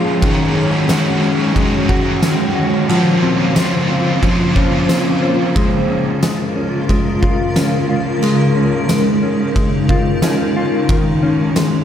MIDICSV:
0, 0, Header, 1, 5, 480
1, 0, Start_track
1, 0, Key_signature, -5, "minor"
1, 0, Tempo, 666667
1, 162, Time_signature, 4, 2, 24, 8
1, 8526, End_track
2, 0, Start_track
2, 0, Title_t, "Ambient pad"
2, 0, Program_c, 0, 92
2, 0, Note_on_c, 0, 53, 81
2, 0, Note_on_c, 0, 58, 71
2, 0, Note_on_c, 0, 68, 75
2, 0, Note_on_c, 0, 73, 89
2, 130, Note_off_c, 0, 53, 0
2, 130, Note_off_c, 0, 58, 0
2, 132, Note_off_c, 0, 68, 0
2, 156, Note_on_c, 0, 51, 79
2, 160, Note_on_c, 0, 56, 77
2, 160, Note_on_c, 0, 66, 78
2, 2051, Note_off_c, 0, 73, 0
2, 2060, Note_off_c, 0, 51, 0
2, 2062, Note_off_c, 0, 56, 0
2, 2062, Note_off_c, 0, 66, 0
2, 2081, Note_on_c, 0, 65, 72
2, 2082, Note_on_c, 0, 72, 88
2, 2083, Note_on_c, 0, 49, 83
2, 2084, Note_on_c, 0, 58, 76
2, 3982, Note_off_c, 0, 65, 0
2, 3983, Note_off_c, 0, 49, 0
2, 3983, Note_off_c, 0, 72, 0
2, 3984, Note_off_c, 0, 58, 0
2, 3998, Note_on_c, 0, 65, 74
2, 4000, Note_on_c, 0, 56, 75
2, 4000, Note_on_c, 0, 70, 91
2, 4002, Note_on_c, 0, 49, 80
2, 5901, Note_off_c, 0, 65, 0
2, 5925, Note_on_c, 0, 63, 71
2, 7812, Note_off_c, 0, 70, 0
2, 7813, Note_off_c, 0, 49, 0
2, 7824, Note_off_c, 0, 63, 0
2, 7842, Note_on_c, 0, 51, 83
2, 7842, Note_on_c, 0, 73, 89
2, 7843, Note_on_c, 0, 66, 75
2, 8526, Note_off_c, 0, 51, 0
2, 8526, Note_off_c, 0, 56, 0
2, 8526, Note_off_c, 0, 66, 0
2, 8526, Note_off_c, 0, 73, 0
2, 8526, End_track
3, 0, Start_track
3, 0, Title_t, "Clean electric guitar"
3, 0, Program_c, 1, 27
3, 0, Note_on_c, 1, 56, 62
3, 0, Note_on_c, 1, 61, 66
3, 0, Note_on_c, 1, 65, 68
3, 162, Note_on_c, 1, 51, 90
3, 210, Note_off_c, 1, 65, 0
3, 399, Note_off_c, 1, 61, 0
3, 402, Note_on_c, 1, 61, 59
3, 638, Note_off_c, 1, 56, 0
3, 641, Note_on_c, 1, 56, 64
3, 880, Note_off_c, 1, 61, 0
3, 883, Note_on_c, 1, 61, 60
3, 1112, Note_off_c, 1, 56, 0
3, 1121, Note_on_c, 1, 56, 62
3, 1359, Note_on_c, 1, 66, 69
3, 1598, Note_off_c, 1, 61, 0
3, 1601, Note_on_c, 1, 61, 61
3, 1832, Note_off_c, 1, 66, 0
3, 1840, Note_on_c, 1, 66, 64
3, 2079, Note_off_c, 1, 51, 0
3, 2082, Note_on_c, 1, 53, 91
3, 2129, Note_off_c, 1, 66, 0
3, 2130, Note_off_c, 1, 56, 0
3, 2321, Note_on_c, 1, 60, 59
3, 2343, Note_off_c, 1, 61, 0
3, 2559, Note_off_c, 1, 53, 0
3, 2562, Note_on_c, 1, 53, 61
3, 2795, Note_off_c, 1, 60, 0
3, 2804, Note_on_c, 1, 60, 61
3, 3040, Note_off_c, 1, 53, 0
3, 3043, Note_on_c, 1, 53, 62
3, 3284, Note_on_c, 1, 61, 67
3, 3514, Note_off_c, 1, 60, 0
3, 3523, Note_on_c, 1, 60, 62
3, 3760, Note_off_c, 1, 61, 0
3, 3763, Note_on_c, 1, 61, 64
3, 3998, Note_off_c, 1, 60, 0
3, 4001, Note_on_c, 1, 56, 89
3, 4240, Note_off_c, 1, 61, 0
3, 4243, Note_on_c, 1, 61, 61
3, 4478, Note_off_c, 1, 56, 0
3, 4481, Note_on_c, 1, 56, 59
3, 4718, Note_off_c, 1, 61, 0
3, 4720, Note_on_c, 1, 61, 61
3, 4958, Note_off_c, 1, 56, 0
3, 4961, Note_on_c, 1, 56, 62
3, 5201, Note_on_c, 1, 65, 70
3, 5439, Note_off_c, 1, 61, 0
3, 5441, Note_on_c, 1, 61, 63
3, 5563, Note_off_c, 1, 53, 0
3, 5672, Note_off_c, 1, 65, 0
3, 5681, Note_on_c, 1, 65, 68
3, 5921, Note_off_c, 1, 56, 0
3, 5924, Note_on_c, 1, 56, 86
3, 6161, Note_off_c, 1, 61, 0
3, 6163, Note_on_c, 1, 61, 64
3, 6400, Note_off_c, 1, 56, 0
3, 6403, Note_on_c, 1, 56, 64
3, 6639, Note_off_c, 1, 61, 0
3, 6642, Note_on_c, 1, 61, 63
3, 6879, Note_off_c, 1, 56, 0
3, 6882, Note_on_c, 1, 56, 63
3, 7115, Note_off_c, 1, 65, 0
3, 7123, Note_on_c, 1, 65, 71
3, 7362, Note_off_c, 1, 61, 0
3, 7365, Note_on_c, 1, 61, 67
3, 7597, Note_off_c, 1, 65, 0
3, 7606, Note_on_c, 1, 65, 68
3, 7842, Note_on_c, 1, 51, 91
3, 7892, Note_off_c, 1, 65, 0
3, 8081, Note_off_c, 1, 61, 0
3, 8084, Note_on_c, 1, 61, 66
3, 8320, Note_off_c, 1, 56, 0
3, 8323, Note_on_c, 1, 56, 64
3, 8526, Note_off_c, 1, 51, 0
3, 8526, Note_off_c, 1, 56, 0
3, 8526, Note_off_c, 1, 61, 0
3, 8526, End_track
4, 0, Start_track
4, 0, Title_t, "Overdriven electric guitar"
4, 0, Program_c, 2, 29
4, 0, Note_on_c, 2, 53, 62
4, 0, Note_on_c, 2, 56, 70
4, 0, Note_on_c, 2, 61, 66
4, 0, Note_on_c, 2, 65, 69
4, 148, Note_off_c, 2, 53, 0
4, 153, Note_on_c, 2, 44, 91
4, 163, Note_on_c, 2, 51, 92
4, 167, Note_off_c, 2, 56, 0
4, 170, Note_on_c, 2, 54, 87
4, 172, Note_off_c, 2, 61, 0
4, 175, Note_on_c, 2, 61, 103
4, 180, Note_off_c, 2, 65, 0
4, 183, Note_on_c, 2, 66, 94
4, 624, Note_off_c, 2, 51, 0
4, 632, Note_on_c, 2, 51, 73
4, 638, Note_off_c, 2, 44, 0
4, 638, Note_off_c, 2, 54, 0
4, 646, Note_on_c, 2, 54, 72
4, 652, Note_off_c, 2, 66, 0
4, 654, Note_off_c, 2, 61, 0
4, 660, Note_on_c, 2, 61, 71
4, 670, Note_on_c, 2, 66, 72
4, 1090, Note_off_c, 2, 51, 0
4, 1099, Note_on_c, 2, 51, 68
4, 1124, Note_off_c, 2, 54, 0
4, 1131, Note_on_c, 2, 54, 71
4, 1136, Note_off_c, 2, 66, 0
4, 1154, Note_off_c, 2, 61, 0
4, 1157, Note_on_c, 2, 61, 70
4, 1184, Note_on_c, 2, 66, 77
4, 2071, Note_off_c, 2, 51, 0
4, 2073, Note_on_c, 2, 46, 94
4, 2082, Note_on_c, 2, 53, 84
4, 2083, Note_off_c, 2, 54, 0
4, 2086, Note_on_c, 2, 58, 86
4, 2089, Note_off_c, 2, 61, 0
4, 2092, Note_on_c, 2, 61, 89
4, 2096, Note_off_c, 2, 66, 0
4, 2099, Note_on_c, 2, 65, 100
4, 2103, Note_on_c, 2, 72, 89
4, 2548, Note_off_c, 2, 58, 0
4, 2551, Note_on_c, 2, 58, 68
4, 2557, Note_off_c, 2, 46, 0
4, 2561, Note_off_c, 2, 61, 0
4, 2564, Note_on_c, 2, 61, 69
4, 2573, Note_off_c, 2, 72, 0
4, 2576, Note_off_c, 2, 65, 0
4, 2579, Note_on_c, 2, 65, 67
4, 2589, Note_on_c, 2, 72, 72
4, 3016, Note_off_c, 2, 58, 0
4, 3019, Note_on_c, 2, 58, 61
4, 3049, Note_off_c, 2, 61, 0
4, 3052, Note_on_c, 2, 61, 66
4, 3056, Note_off_c, 2, 72, 0
4, 3078, Note_off_c, 2, 65, 0
4, 3081, Note_on_c, 2, 65, 71
4, 3104, Note_on_c, 2, 72, 72
4, 4033, Note_off_c, 2, 72, 0
4, 4393, Note_off_c, 2, 53, 0
4, 4393, Note_off_c, 2, 58, 0
4, 4393, Note_off_c, 2, 61, 0
4, 4393, Note_off_c, 2, 65, 0
4, 8526, End_track
5, 0, Start_track
5, 0, Title_t, "Drums"
5, 162, Note_on_c, 9, 36, 119
5, 162, Note_on_c, 9, 51, 59
5, 234, Note_off_c, 9, 36, 0
5, 234, Note_off_c, 9, 51, 0
5, 641, Note_on_c, 9, 54, 65
5, 642, Note_on_c, 9, 38, 121
5, 643, Note_on_c, 9, 51, 64
5, 713, Note_off_c, 9, 54, 0
5, 714, Note_off_c, 9, 38, 0
5, 715, Note_off_c, 9, 51, 0
5, 1123, Note_on_c, 9, 36, 88
5, 1126, Note_on_c, 9, 51, 49
5, 1195, Note_off_c, 9, 36, 0
5, 1198, Note_off_c, 9, 51, 0
5, 1363, Note_on_c, 9, 36, 91
5, 1435, Note_off_c, 9, 36, 0
5, 1602, Note_on_c, 9, 38, 106
5, 1603, Note_on_c, 9, 51, 59
5, 1603, Note_on_c, 9, 54, 65
5, 1674, Note_off_c, 9, 38, 0
5, 1675, Note_off_c, 9, 51, 0
5, 1675, Note_off_c, 9, 54, 0
5, 2084, Note_on_c, 9, 51, 56
5, 2156, Note_off_c, 9, 51, 0
5, 2563, Note_on_c, 9, 54, 64
5, 2564, Note_on_c, 9, 38, 120
5, 2565, Note_on_c, 9, 51, 63
5, 2635, Note_off_c, 9, 54, 0
5, 2636, Note_off_c, 9, 38, 0
5, 2637, Note_off_c, 9, 51, 0
5, 3043, Note_on_c, 9, 36, 87
5, 3046, Note_on_c, 9, 51, 51
5, 3115, Note_off_c, 9, 36, 0
5, 3118, Note_off_c, 9, 51, 0
5, 3283, Note_on_c, 9, 36, 90
5, 3355, Note_off_c, 9, 36, 0
5, 3522, Note_on_c, 9, 38, 102
5, 3523, Note_on_c, 9, 51, 61
5, 3523, Note_on_c, 9, 54, 59
5, 3594, Note_off_c, 9, 38, 0
5, 3595, Note_off_c, 9, 51, 0
5, 3595, Note_off_c, 9, 54, 0
5, 4003, Note_on_c, 9, 36, 118
5, 4003, Note_on_c, 9, 51, 60
5, 4075, Note_off_c, 9, 36, 0
5, 4075, Note_off_c, 9, 51, 0
5, 4482, Note_on_c, 9, 54, 63
5, 4484, Note_on_c, 9, 38, 120
5, 4484, Note_on_c, 9, 51, 66
5, 4554, Note_off_c, 9, 54, 0
5, 4556, Note_off_c, 9, 38, 0
5, 4556, Note_off_c, 9, 51, 0
5, 4963, Note_on_c, 9, 36, 86
5, 4967, Note_on_c, 9, 51, 53
5, 5035, Note_off_c, 9, 36, 0
5, 5039, Note_off_c, 9, 51, 0
5, 5203, Note_on_c, 9, 36, 92
5, 5275, Note_off_c, 9, 36, 0
5, 5443, Note_on_c, 9, 38, 106
5, 5444, Note_on_c, 9, 51, 65
5, 5444, Note_on_c, 9, 54, 61
5, 5515, Note_off_c, 9, 38, 0
5, 5516, Note_off_c, 9, 51, 0
5, 5516, Note_off_c, 9, 54, 0
5, 5922, Note_on_c, 9, 51, 59
5, 5994, Note_off_c, 9, 51, 0
5, 6401, Note_on_c, 9, 54, 69
5, 6402, Note_on_c, 9, 38, 112
5, 6403, Note_on_c, 9, 51, 66
5, 6473, Note_off_c, 9, 54, 0
5, 6474, Note_off_c, 9, 38, 0
5, 6475, Note_off_c, 9, 51, 0
5, 6882, Note_on_c, 9, 36, 99
5, 6884, Note_on_c, 9, 51, 53
5, 6954, Note_off_c, 9, 36, 0
5, 6956, Note_off_c, 9, 51, 0
5, 7122, Note_on_c, 9, 36, 91
5, 7194, Note_off_c, 9, 36, 0
5, 7360, Note_on_c, 9, 38, 106
5, 7361, Note_on_c, 9, 51, 64
5, 7361, Note_on_c, 9, 54, 68
5, 7432, Note_off_c, 9, 38, 0
5, 7433, Note_off_c, 9, 51, 0
5, 7433, Note_off_c, 9, 54, 0
5, 7842, Note_on_c, 9, 36, 118
5, 7842, Note_on_c, 9, 51, 65
5, 7914, Note_off_c, 9, 36, 0
5, 7914, Note_off_c, 9, 51, 0
5, 8323, Note_on_c, 9, 54, 66
5, 8324, Note_on_c, 9, 38, 118
5, 8325, Note_on_c, 9, 51, 64
5, 8395, Note_off_c, 9, 54, 0
5, 8396, Note_off_c, 9, 38, 0
5, 8397, Note_off_c, 9, 51, 0
5, 8526, End_track
0, 0, End_of_file